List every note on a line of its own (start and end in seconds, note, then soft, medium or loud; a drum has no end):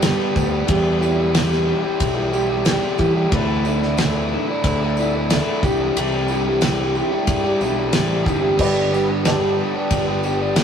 0.00 0.14 G2 loud
0.00 0.66 G2 loud
0.00 0.66 D3 loud
0.00 0.34 G3 loud
0.00 0.35 B3 loud
0.00 0.35 D4 loud
0.00 0.36 G4 loud
0.00 snare loud
0.00 ride bell medium
0.00 tambourine loud
0.35 0.62 D2 loud
0.35 0.51 G3 medium
0.35 0.51 B3 medium
0.35 0.50 D4 medium
0.35 0.50 G4 loud
0.35 kick loud
0.35 tambourine medium
0.39 0.66 G3 medium
0.51 0.66 G3 medium
0.51 0.67 B3 medium
0.51 0.67 D4 medium
0.51 0.66 G4 medium
0.66 1.32 E2 loud
0.66 1.71 E2 loud
0.66 1.32 B2 loud
0.66 1.00 E3 loud
0.66 1.00 G3 loud
0.66 1.02 B3 medium
0.66 1.01 E4 loud
0.66 1.01 G4 loud
0.66 kick loud
0.66 ride bell medium
1.00 1.19 E3 medium
1.00 1.18 G3 medium
1.00 1.17 E4 medium
1.00 1.16 G4 medium
1.00 tambourine medium
1.05 1.69 B3 soft
1.17 1.33 E3 medium
1.17 1.33 G3 medium
1.17 1.34 E4 medium
1.17 1.33 G4 medium
1.33 1.84 E2 medium
1.33 1.84 B2 medium
1.33 1.52 E3 medium
1.33 1.50 G3 medium
1.33 1.50 E4 medium
1.33 1.48 G4 loud
1.33 snare loud
1.33 ride bell medium
1.33 tambourine loud
1.49 1.83 E3 medium
1.49 1.82 G3 medium
1.49 1.83 E4 medium
1.49 1.81 G4 medium
1.49 snare soft
1.67 2.35 B3 medium
1.67 2.35 E4 medium
1.67 2.32 G4 medium
1.82 2.17 E3 medium
1.82 2.15 G3 medium
1.82 2.15 E4 medium
1.82 2.14 G4 medium
2.00 2.77 B1 medium
2.00 kick loud
2.00 ride bell medium
2.00 tambourine medium
2.15 2.32 E3 medium
2.15 2.31 G3 medium
2.15 2.33 E4 medium
2.15 2.32 G4 medium
2.32 2.51 E3 medium
2.32 2.50 G3 medium
2.32 2.51 E4 medium
2.32 2.49 G4 medium
2.32 tambourine medium
2.37 2.68 B3 medium
2.50 2.66 E3 medium
2.50 2.66 G3 medium
2.50 2.66 E4 medium
2.50 2.66 G4 medium
2.65 3.30 E2 loud
2.65 3.31 B2 loud
2.65 2.97 E3 loud
2.65 2.98 G3 loud
2.65 2.99 E4 loud
2.65 2.99 G4 loud
2.65 snare loud
2.65 ride bell medium
2.65 tambourine medium
2.69 3.01 B3 medium
2.98 3.16 E3 medium
2.98 3.25 E3 loud
2.98 3.14 G3 medium
2.98 3.14 E4 medium
2.98 3.13 G4 medium
2.98 kick medium
2.98 tambourine medium
3.03 3.33 B3 medium
3.14 3.32 E3 medium
3.14 3.30 G3 medium
3.14 3.33 E4 medium
3.14 3.30 G4 medium
3.32 4.35 D2 loud
3.32 3.97 D3 loud
3.32 3.64 E3 loud
3.32 3.65 A3 loud
3.32 3.66 D4 loud
3.32 3.67 E4 loud
3.32 3.63 A4 loud
3.32 kick loud
3.32 ride bell medium
3.64 3.99 E3 medium
3.64 3.81 A3 medium
3.64 3.82 D4 medium
3.64 3.81 E4 medium
3.64 4.30 A4 medium
3.64 tambourine medium
3.81 3.98 A3 medium
3.81 3.99 D4 medium
3.81 4.01 E4 medium
3.81 snare soft
3.97 4.48 D3 medium
3.97 4.53 E3 loud
3.97 4.16 A3 loud
3.97 4.16 D4 loud
3.97 4.15 E4 loud
3.97 snare loud
3.97 ride bell medium
3.97 tambourine medium
4.16 4.49 A3 medium
4.16 4.50 D4 medium
4.16 4.47 E4 medium
4.31 5.00 D4 medium
4.31 4.98 E4 medium
4.31 4.96 A4 medium
4.49 4.82 A3 medium
4.49 4.81 D4 medium
4.49 4.80 E4 medium
4.64 5.41 D2 loud
4.64 kick loud
4.64 ride bell medium
4.64 tambourine medium
4.81 4.97 A3 medium
4.81 4.99 D4 medium
4.81 4.99 E4 medium
4.97 5.29 E3 medium
4.97 5.16 A3 medium
4.97 5.15 D4 medium
4.97 5.13 E4 loud
4.97 5.30 A4 medium
4.97 tambourine medium
5.14 5.29 A3 medium
5.14 5.30 D4 medium
5.14 5.30 E4 medium
5.30 5.61 D3 loud
5.30 5.61 E3 loud
5.30 5.61 A3 loud
5.30 5.64 D4 loud
5.30 5.62 E4 loud
5.30 snare loud
5.30 ride bell medium
5.30 tambourine loud
5.35 5.63 A4 medium
5.63 5.88 C2 loud
5.63 5.96 C3 loud
5.63 5.97 E3 loud
5.63 5.82 G3 loud
5.63 5.98 D4 medium
5.63 5.80 E4 loud
5.63 5.81 G4 loud
5.63 kick loud
5.63 tambourine medium
5.81 5.98 G3 medium
5.81 5.97 E4 medium
5.81 5.98 G4 medium
5.97 6.99 C2 loud
5.97 6.61 C3 loud
5.97 6.29 E3 loud
5.97 6.30 G3 loud
5.97 6.31 D4 medium
5.97 6.30 E4 loud
5.97 6.32 G4 loud
5.97 ride bell medium
6.28 6.62 E3 medium
6.28 6.48 G3 medium
6.28 6.46 E4 medium
6.28 6.46 G4 medium
6.28 tambourine medium
6.33 6.99 D4 soft
6.46 6.62 G3 medium
6.46 6.62 E4 medium
6.46 6.64 G4 medium
6.61 7.12 C3 medium
6.61 7.12 E3 medium
6.61 6.81 G3 medium
6.61 6.79 E4 loud
6.61 6.78 G4 loud
6.61 snare loud
6.61 ride bell medium
6.61 tambourine medium
6.79 7.14 G3 medium
6.79 7.11 E4 medium
6.79 7.11 G4 medium
6.95 7.62 E4 medium
6.95 7.61 G4 medium
6.95 tambourine soft
6.99 7.63 D4 medium
7.12 7.45 G3 medium
7.12 7.43 E4 medium
7.12 7.43 G4 medium
7.27 7.53 G2 medium
7.27 kick loud
7.27 ride bell medium
7.27 tambourine medium
7.43 7.61 G3 medium
7.43 7.60 E4 medium
7.43 7.62 G4 medium
7.60 7.91 B1 loud
7.60 7.91 E3 medium
7.60 7.78 G3 medium
7.60 7.76 E4 medium
7.60 7.76 G4 medium
7.60 tambourine medium
7.65 7.93 D4 soft
7.76 7.93 G3 medium
7.76 7.92 E4 medium
7.76 7.93 G4 medium
7.92 8.24 A1 loud
7.92 8.57 C3 loud
7.92 8.24 E3 medium
7.92 8.25 G3 loud
7.92 8.27 D4 medium
7.92 8.24 E4 loud
7.92 8.26 G4 loud
7.92 snare loud
7.92 ride bell medium
7.92 tambourine medium
8.25 8.56 G1 medium
8.25 8.57 E3 medium
8.25 8.43 G3 medium
8.25 8.41 E4 medium
8.25 8.41 G4 medium
8.25 kick medium
8.25 tambourine medium
8.29 8.60 D4 soft
8.42 8.57 G3 medium
8.42 8.57 E4 medium
8.42 8.58 G4 medium
8.57 9.61 G1 loud
8.57 9.23 G2 loud
8.57 9.24 D3 loud
8.57 8.91 G3 loud
8.57 8.91 B3 loud
8.57 8.91 D4 loud
8.57 8.92 G4 loud
8.57 9.03 B4 medium
8.57 9.03 D5 medium
8.57 9.03 G5 medium
8.57 9.03 B5 medium
8.57 kick loud
8.57 crash loud
8.91 9.10 G3 medium
8.91 9.10 B3 medium
8.91 9.08 D4 medium
8.91 9.09 G4 medium
8.91 tambourine medium
8.95 9.61 G3 soft
9.09 9.26 G3 medium
9.09 9.26 B3 medium
9.09 9.26 D4 medium
9.09 9.27 G4 medium
9.25 9.74 G2 medium
9.25 9.75 D3 loud
9.25 9.44 G3 medium
9.25 9.43 B3 loud
9.25 9.41 D4 loud
9.25 9.41 G4 loud
9.25 10.13 B4 medium
9.25 10.13 D5 medium
9.25 10.12 G5 medium
9.25 10.12 A5 medium
9.25 snare loud
9.25 ride bell medium
9.25 tambourine medium
9.41 9.76 G3 medium
9.41 9.75 B3 medium
9.41 9.74 D4 medium
9.41 9.73 G4 medium
9.58 10.26 G3 medium
9.58 10.25 B3 medium
9.58 10.24 D4 medium
9.58 10.22 G4 medium
9.75 10.08 G3 medium
9.75 10.07 B3 medium
9.75 10.06 D4 medium
9.75 10.06 G4 medium
9.91 10.64 G1 loud
9.91 kick loud
9.91 ride bell medium
9.91 tambourine medium
10.07 10.22 G3 medium
10.07 10.23 B3 medium
10.07 10.24 D4 medium
10.07 10.25 G4 medium
10.23 10.42 G3 medium
10.23 10.41 B3 medium
10.23 10.41 D4 medium
10.23 10.40 G4 loud
10.23 tambourine medium
10.41 10.57 G3 medium
10.41 10.57 B3 medium
10.41 10.57 D4 medium
10.41 10.57 G4 medium
10.56 10.64 G2 loud
10.56 10.64 D3 medium
10.56 10.64 G3 loud
10.56 10.64 B3 loud
10.56 10.64 D4 loud
10.56 10.64 G4 loud
10.56 snare loud
10.56 ride bell medium
10.56 tambourine loud